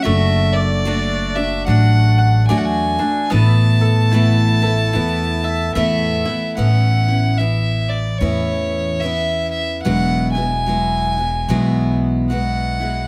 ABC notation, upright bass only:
X:1
M:4/4
L:1/8
Q:"Swing" 1/4=74
K:A
V:1 name="Upright bass" clef=bass
F,,,4 A,,,2 E,, z | A,,,4 E,,2 E,, z | A,,,4 E,,4 | E,,,4 B,,,4 |]